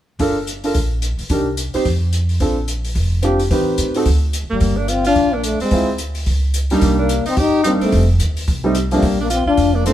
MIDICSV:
0, 0, Header, 1, 7, 480
1, 0, Start_track
1, 0, Key_signature, -2, "minor"
1, 0, Tempo, 275862
1, 341, Time_signature, 4, 2, 24, 8
1, 17282, End_track
2, 0, Start_track
2, 0, Title_t, "Alto saxophone"
2, 0, Program_c, 0, 65
2, 7832, Note_on_c, 0, 58, 62
2, 8305, Note_on_c, 0, 62, 70
2, 8331, Note_off_c, 0, 58, 0
2, 8500, Note_on_c, 0, 65, 68
2, 8527, Note_off_c, 0, 62, 0
2, 8789, Note_off_c, 0, 65, 0
2, 8811, Note_on_c, 0, 65, 82
2, 9279, Note_on_c, 0, 62, 69
2, 9305, Note_off_c, 0, 65, 0
2, 9465, Note_off_c, 0, 62, 0
2, 9465, Note_on_c, 0, 62, 63
2, 9751, Note_off_c, 0, 62, 0
2, 9763, Note_on_c, 0, 60, 63
2, 10381, Note_off_c, 0, 60, 0
2, 11694, Note_on_c, 0, 58, 61
2, 12129, Note_off_c, 0, 58, 0
2, 12155, Note_on_c, 0, 62, 68
2, 12599, Note_off_c, 0, 62, 0
2, 12633, Note_on_c, 0, 63, 76
2, 12829, Note_on_c, 0, 67, 92
2, 12855, Note_off_c, 0, 63, 0
2, 13274, Note_off_c, 0, 67, 0
2, 13284, Note_on_c, 0, 63, 67
2, 13418, Note_off_c, 0, 63, 0
2, 13594, Note_on_c, 0, 60, 61
2, 14038, Note_off_c, 0, 60, 0
2, 15531, Note_on_c, 0, 58, 62
2, 15967, Note_off_c, 0, 58, 0
2, 16017, Note_on_c, 0, 62, 61
2, 16173, Note_off_c, 0, 62, 0
2, 16184, Note_on_c, 0, 65, 72
2, 16450, Note_off_c, 0, 65, 0
2, 16482, Note_on_c, 0, 65, 80
2, 16966, Note_on_c, 0, 62, 68
2, 16992, Note_off_c, 0, 65, 0
2, 17148, Note_off_c, 0, 62, 0
2, 17164, Note_on_c, 0, 60, 67
2, 17282, Note_off_c, 0, 60, 0
2, 17282, End_track
3, 0, Start_track
3, 0, Title_t, "Grand piano"
3, 0, Program_c, 1, 0
3, 341, Note_on_c, 1, 62, 61
3, 355, Note_on_c, 1, 65, 53
3, 362, Note_on_c, 1, 69, 59
3, 375, Note_on_c, 1, 70, 64
3, 601, Note_off_c, 1, 62, 0
3, 608, Note_off_c, 1, 65, 0
3, 611, Note_off_c, 1, 69, 0
3, 618, Note_off_c, 1, 70, 0
3, 1112, Note_on_c, 1, 62, 51
3, 1125, Note_on_c, 1, 65, 48
3, 1133, Note_on_c, 1, 69, 46
3, 1136, Note_on_c, 1, 70, 57
3, 1283, Note_off_c, 1, 62, 0
3, 1290, Note_off_c, 1, 65, 0
3, 1293, Note_off_c, 1, 69, 0
3, 1295, Note_off_c, 1, 70, 0
3, 2269, Note_on_c, 1, 62, 52
3, 2276, Note_on_c, 1, 63, 42
3, 2292, Note_on_c, 1, 67, 45
3, 2298, Note_on_c, 1, 70, 52
3, 2524, Note_off_c, 1, 62, 0
3, 2528, Note_off_c, 1, 63, 0
3, 2536, Note_off_c, 1, 67, 0
3, 2539, Note_off_c, 1, 70, 0
3, 3026, Note_on_c, 1, 60, 58
3, 3038, Note_on_c, 1, 63, 54
3, 3039, Note_on_c, 1, 67, 45
3, 3049, Note_on_c, 1, 72, 64
3, 3200, Note_off_c, 1, 60, 0
3, 3205, Note_off_c, 1, 63, 0
3, 3206, Note_off_c, 1, 67, 0
3, 3211, Note_off_c, 1, 72, 0
3, 4186, Note_on_c, 1, 60, 51
3, 4198, Note_on_c, 1, 62, 45
3, 4200, Note_on_c, 1, 65, 44
3, 4214, Note_on_c, 1, 69, 51
3, 4443, Note_off_c, 1, 60, 0
3, 4449, Note_off_c, 1, 62, 0
3, 4450, Note_off_c, 1, 65, 0
3, 4456, Note_off_c, 1, 69, 0
3, 5609, Note_on_c, 1, 60, 54
3, 5627, Note_on_c, 1, 62, 47
3, 5636, Note_on_c, 1, 65, 53
3, 5647, Note_on_c, 1, 67, 64
3, 5874, Note_off_c, 1, 60, 0
3, 5883, Note_off_c, 1, 62, 0
3, 5888, Note_off_c, 1, 65, 0
3, 5893, Note_off_c, 1, 67, 0
3, 6102, Note_on_c, 1, 60, 58
3, 6117, Note_on_c, 1, 63, 53
3, 6127, Note_on_c, 1, 67, 50
3, 6135, Note_on_c, 1, 71, 61
3, 6812, Note_off_c, 1, 60, 0
3, 6819, Note_off_c, 1, 63, 0
3, 6824, Note_off_c, 1, 67, 0
3, 6828, Note_off_c, 1, 71, 0
3, 6884, Note_on_c, 1, 60, 58
3, 6887, Note_on_c, 1, 63, 54
3, 6893, Note_on_c, 1, 66, 55
3, 6909, Note_on_c, 1, 69, 60
3, 7048, Note_off_c, 1, 60, 0
3, 7050, Note_off_c, 1, 63, 0
3, 7053, Note_off_c, 1, 66, 0
3, 7061, Note_off_c, 1, 69, 0
3, 9945, Note_on_c, 1, 56, 47
3, 9955, Note_on_c, 1, 60, 47
3, 9968, Note_on_c, 1, 64, 51
3, 9978, Note_on_c, 1, 65, 57
3, 10202, Note_off_c, 1, 56, 0
3, 10207, Note_off_c, 1, 60, 0
3, 10214, Note_off_c, 1, 64, 0
3, 10219, Note_off_c, 1, 65, 0
3, 11678, Note_on_c, 1, 55, 66
3, 11690, Note_on_c, 1, 58, 52
3, 11695, Note_on_c, 1, 62, 55
3, 11707, Note_on_c, 1, 63, 66
3, 12307, Note_off_c, 1, 55, 0
3, 12313, Note_off_c, 1, 58, 0
3, 12315, Note_off_c, 1, 62, 0
3, 12321, Note_off_c, 1, 63, 0
3, 13306, Note_on_c, 1, 55, 51
3, 13324, Note_on_c, 1, 58, 47
3, 13325, Note_on_c, 1, 62, 46
3, 13335, Note_on_c, 1, 63, 58
3, 13783, Note_off_c, 1, 55, 0
3, 13792, Note_off_c, 1, 58, 0
3, 13793, Note_off_c, 1, 62, 0
3, 13798, Note_off_c, 1, 63, 0
3, 15034, Note_on_c, 1, 55, 60
3, 15036, Note_on_c, 1, 57, 52
3, 15057, Note_on_c, 1, 60, 52
3, 15067, Note_on_c, 1, 63, 67
3, 15204, Note_off_c, 1, 55, 0
3, 15205, Note_off_c, 1, 57, 0
3, 15215, Note_off_c, 1, 60, 0
3, 15220, Note_off_c, 1, 63, 0
3, 15516, Note_on_c, 1, 53, 58
3, 15531, Note_on_c, 1, 57, 56
3, 15540, Note_on_c, 1, 60, 55
3, 15546, Note_on_c, 1, 62, 62
3, 15685, Note_off_c, 1, 53, 0
3, 15692, Note_off_c, 1, 57, 0
3, 15697, Note_off_c, 1, 60, 0
3, 15700, Note_off_c, 1, 62, 0
3, 17136, Note_on_c, 1, 53, 49
3, 17158, Note_on_c, 1, 57, 45
3, 17160, Note_on_c, 1, 60, 52
3, 17171, Note_on_c, 1, 62, 52
3, 17282, Note_off_c, 1, 53, 0
3, 17282, Note_off_c, 1, 57, 0
3, 17282, Note_off_c, 1, 60, 0
3, 17282, Note_off_c, 1, 62, 0
3, 17282, End_track
4, 0, Start_track
4, 0, Title_t, "Trombone"
4, 0, Program_c, 2, 57
4, 7870, Note_on_c, 2, 55, 68
4, 8353, Note_on_c, 2, 58, 82
4, 8379, Note_off_c, 2, 55, 0
4, 8553, Note_on_c, 2, 60, 92
4, 8580, Note_off_c, 2, 58, 0
4, 8816, Note_off_c, 2, 60, 0
4, 8829, Note_on_c, 2, 62, 95
4, 9305, Note_on_c, 2, 58, 81
4, 9331, Note_off_c, 2, 62, 0
4, 9495, Note_on_c, 2, 57, 79
4, 9521, Note_off_c, 2, 58, 0
4, 9766, Note_off_c, 2, 57, 0
4, 9777, Note_on_c, 2, 56, 73
4, 10388, Note_off_c, 2, 56, 0
4, 11702, Note_on_c, 2, 55, 67
4, 12133, Note_off_c, 2, 55, 0
4, 12201, Note_on_c, 2, 58, 85
4, 12623, Note_off_c, 2, 58, 0
4, 12680, Note_on_c, 2, 60, 92
4, 12877, Note_on_c, 2, 63, 95
4, 12903, Note_off_c, 2, 60, 0
4, 13329, Note_off_c, 2, 63, 0
4, 13349, Note_on_c, 2, 60, 77
4, 13468, Note_off_c, 2, 60, 0
4, 13637, Note_on_c, 2, 57, 78
4, 14061, Note_off_c, 2, 57, 0
4, 15561, Note_on_c, 2, 55, 75
4, 15983, Note_off_c, 2, 55, 0
4, 16047, Note_on_c, 2, 58, 84
4, 16198, Note_off_c, 2, 58, 0
4, 16218, Note_on_c, 2, 60, 86
4, 16469, Note_off_c, 2, 60, 0
4, 16482, Note_on_c, 2, 62, 91
4, 16976, Note_on_c, 2, 58, 75
4, 17002, Note_off_c, 2, 62, 0
4, 17153, Note_off_c, 2, 58, 0
4, 17181, Note_on_c, 2, 57, 75
4, 17282, Note_off_c, 2, 57, 0
4, 17282, End_track
5, 0, Start_track
5, 0, Title_t, "Upright bass"
5, 0, Program_c, 3, 32
5, 328, Note_on_c, 3, 31, 69
5, 1246, Note_off_c, 3, 31, 0
5, 1295, Note_on_c, 3, 34, 72
5, 2012, Note_off_c, 3, 34, 0
5, 2046, Note_on_c, 3, 34, 58
5, 2234, Note_off_c, 3, 34, 0
5, 2257, Note_on_c, 3, 36, 76
5, 2973, Note_off_c, 3, 36, 0
5, 3220, Note_on_c, 3, 41, 74
5, 4131, Note_off_c, 3, 41, 0
5, 4179, Note_on_c, 3, 34, 67
5, 5091, Note_off_c, 3, 34, 0
5, 5133, Note_on_c, 3, 29, 70
5, 6048, Note_off_c, 3, 29, 0
5, 6093, Note_on_c, 3, 33, 69
5, 6542, Note_off_c, 3, 33, 0
5, 6576, Note_on_c, 3, 45, 74
5, 7024, Note_off_c, 3, 45, 0
5, 7058, Note_on_c, 3, 38, 77
5, 7654, Note_off_c, 3, 38, 0
5, 7691, Note_on_c, 3, 36, 44
5, 7844, Note_off_c, 3, 36, 0
5, 7860, Note_on_c, 3, 30, 53
5, 8009, Note_off_c, 3, 30, 0
5, 8018, Note_on_c, 3, 31, 78
5, 8931, Note_off_c, 3, 31, 0
5, 8979, Note_on_c, 3, 34, 74
5, 9694, Note_off_c, 3, 34, 0
5, 9940, Note_on_c, 3, 38, 80
5, 10852, Note_off_c, 3, 38, 0
5, 10898, Note_on_c, 3, 37, 74
5, 11811, Note_off_c, 3, 37, 0
5, 11855, Note_on_c, 3, 36, 76
5, 12573, Note_off_c, 3, 36, 0
5, 12818, Note_on_c, 3, 31, 77
5, 13534, Note_off_c, 3, 31, 0
5, 13780, Note_on_c, 3, 29, 81
5, 14227, Note_off_c, 3, 29, 0
5, 14263, Note_on_c, 3, 39, 67
5, 14708, Note_off_c, 3, 39, 0
5, 14749, Note_on_c, 3, 36, 82
5, 15656, Note_off_c, 3, 36, 0
5, 15703, Note_on_c, 3, 34, 73
5, 16416, Note_off_c, 3, 34, 0
5, 16450, Note_on_c, 3, 33, 65
5, 16636, Note_off_c, 3, 33, 0
5, 16667, Note_on_c, 3, 29, 73
5, 17282, Note_off_c, 3, 29, 0
5, 17282, End_track
6, 0, Start_track
6, 0, Title_t, "Muted upright bass strokes"
6, 3027, Note_on_c, 9, 29, 34
6, 3201, Note_off_c, 9, 29, 0
6, 12622, Note_on_c, 9, 29, 35
6, 12796, Note_off_c, 9, 29, 0
6, 13581, Note_on_c, 9, 29, 32
6, 13755, Note_off_c, 9, 29, 0
6, 17282, End_track
7, 0, Start_track
7, 0, Title_t, "Drums"
7, 337, Note_on_c, 9, 46, 35
7, 342, Note_on_c, 9, 36, 27
7, 511, Note_off_c, 9, 46, 0
7, 516, Note_off_c, 9, 36, 0
7, 822, Note_on_c, 9, 42, 41
7, 996, Note_off_c, 9, 42, 0
7, 1108, Note_on_c, 9, 46, 31
7, 1282, Note_off_c, 9, 46, 0
7, 1295, Note_on_c, 9, 46, 33
7, 1304, Note_on_c, 9, 36, 24
7, 1469, Note_off_c, 9, 46, 0
7, 1478, Note_off_c, 9, 36, 0
7, 1775, Note_on_c, 9, 42, 42
7, 1949, Note_off_c, 9, 42, 0
7, 2063, Note_on_c, 9, 46, 26
7, 2237, Note_off_c, 9, 46, 0
7, 2252, Note_on_c, 9, 46, 38
7, 2263, Note_on_c, 9, 36, 31
7, 2426, Note_off_c, 9, 46, 0
7, 2437, Note_off_c, 9, 36, 0
7, 2736, Note_on_c, 9, 42, 45
7, 2910, Note_off_c, 9, 42, 0
7, 3026, Note_on_c, 9, 46, 29
7, 3200, Note_off_c, 9, 46, 0
7, 3222, Note_on_c, 9, 46, 32
7, 3229, Note_on_c, 9, 36, 29
7, 3396, Note_off_c, 9, 46, 0
7, 3403, Note_off_c, 9, 36, 0
7, 3699, Note_on_c, 9, 42, 43
7, 3873, Note_off_c, 9, 42, 0
7, 3985, Note_on_c, 9, 46, 25
7, 4159, Note_off_c, 9, 46, 0
7, 4178, Note_on_c, 9, 46, 33
7, 4185, Note_on_c, 9, 36, 26
7, 4352, Note_off_c, 9, 46, 0
7, 4359, Note_off_c, 9, 36, 0
7, 4660, Note_on_c, 9, 42, 41
7, 4834, Note_off_c, 9, 42, 0
7, 4950, Note_on_c, 9, 46, 32
7, 5124, Note_off_c, 9, 46, 0
7, 5140, Note_on_c, 9, 46, 34
7, 5145, Note_on_c, 9, 36, 25
7, 5314, Note_off_c, 9, 46, 0
7, 5319, Note_off_c, 9, 36, 0
7, 5614, Note_on_c, 9, 42, 42
7, 5788, Note_off_c, 9, 42, 0
7, 5907, Note_on_c, 9, 46, 29
7, 6081, Note_off_c, 9, 46, 0
7, 6103, Note_on_c, 9, 46, 34
7, 6104, Note_on_c, 9, 36, 32
7, 6277, Note_off_c, 9, 46, 0
7, 6278, Note_off_c, 9, 36, 0
7, 6573, Note_on_c, 9, 42, 41
7, 6747, Note_off_c, 9, 42, 0
7, 6863, Note_on_c, 9, 46, 31
7, 7037, Note_off_c, 9, 46, 0
7, 7055, Note_on_c, 9, 46, 35
7, 7062, Note_on_c, 9, 36, 27
7, 7229, Note_off_c, 9, 46, 0
7, 7236, Note_off_c, 9, 36, 0
7, 7539, Note_on_c, 9, 42, 42
7, 7713, Note_off_c, 9, 42, 0
7, 8012, Note_on_c, 9, 46, 35
7, 8022, Note_on_c, 9, 36, 30
7, 8186, Note_off_c, 9, 46, 0
7, 8196, Note_off_c, 9, 36, 0
7, 8495, Note_on_c, 9, 42, 45
7, 8669, Note_off_c, 9, 42, 0
7, 8778, Note_on_c, 9, 46, 33
7, 8952, Note_off_c, 9, 46, 0
7, 8968, Note_on_c, 9, 46, 32
7, 8979, Note_on_c, 9, 36, 25
7, 9142, Note_off_c, 9, 46, 0
7, 9153, Note_off_c, 9, 36, 0
7, 9458, Note_on_c, 9, 42, 46
7, 9632, Note_off_c, 9, 42, 0
7, 9745, Note_on_c, 9, 46, 28
7, 9919, Note_off_c, 9, 46, 0
7, 9935, Note_on_c, 9, 46, 37
7, 9944, Note_on_c, 9, 36, 30
7, 10109, Note_off_c, 9, 46, 0
7, 10118, Note_off_c, 9, 36, 0
7, 10411, Note_on_c, 9, 42, 40
7, 10585, Note_off_c, 9, 42, 0
7, 10698, Note_on_c, 9, 46, 33
7, 10872, Note_off_c, 9, 46, 0
7, 10896, Note_on_c, 9, 46, 38
7, 10907, Note_on_c, 9, 36, 25
7, 11070, Note_off_c, 9, 46, 0
7, 11081, Note_off_c, 9, 36, 0
7, 11376, Note_on_c, 9, 42, 46
7, 11550, Note_off_c, 9, 42, 0
7, 11661, Note_on_c, 9, 46, 33
7, 11835, Note_off_c, 9, 46, 0
7, 11855, Note_on_c, 9, 46, 40
7, 11865, Note_on_c, 9, 36, 31
7, 12029, Note_off_c, 9, 46, 0
7, 12039, Note_off_c, 9, 36, 0
7, 12339, Note_on_c, 9, 42, 42
7, 12513, Note_off_c, 9, 42, 0
7, 12628, Note_on_c, 9, 46, 34
7, 12802, Note_off_c, 9, 46, 0
7, 12820, Note_on_c, 9, 46, 37
7, 12828, Note_on_c, 9, 36, 30
7, 12994, Note_off_c, 9, 46, 0
7, 13002, Note_off_c, 9, 36, 0
7, 13299, Note_on_c, 9, 42, 45
7, 13473, Note_off_c, 9, 42, 0
7, 13595, Note_on_c, 9, 46, 28
7, 13769, Note_off_c, 9, 46, 0
7, 13784, Note_on_c, 9, 46, 33
7, 13791, Note_on_c, 9, 36, 32
7, 13958, Note_off_c, 9, 46, 0
7, 13965, Note_off_c, 9, 36, 0
7, 14262, Note_on_c, 9, 42, 46
7, 14436, Note_off_c, 9, 42, 0
7, 14559, Note_on_c, 9, 46, 37
7, 14733, Note_off_c, 9, 46, 0
7, 14749, Note_on_c, 9, 46, 35
7, 14753, Note_on_c, 9, 36, 26
7, 14923, Note_off_c, 9, 46, 0
7, 14927, Note_off_c, 9, 36, 0
7, 15219, Note_on_c, 9, 42, 42
7, 15393, Note_off_c, 9, 42, 0
7, 15507, Note_on_c, 9, 46, 30
7, 15681, Note_off_c, 9, 46, 0
7, 15700, Note_on_c, 9, 46, 36
7, 15708, Note_on_c, 9, 36, 30
7, 15874, Note_off_c, 9, 46, 0
7, 15882, Note_off_c, 9, 36, 0
7, 16184, Note_on_c, 9, 42, 47
7, 16358, Note_off_c, 9, 42, 0
7, 16659, Note_on_c, 9, 46, 37
7, 16667, Note_on_c, 9, 36, 28
7, 16833, Note_off_c, 9, 46, 0
7, 16841, Note_off_c, 9, 36, 0
7, 17152, Note_on_c, 9, 42, 42
7, 17282, Note_off_c, 9, 42, 0
7, 17282, End_track
0, 0, End_of_file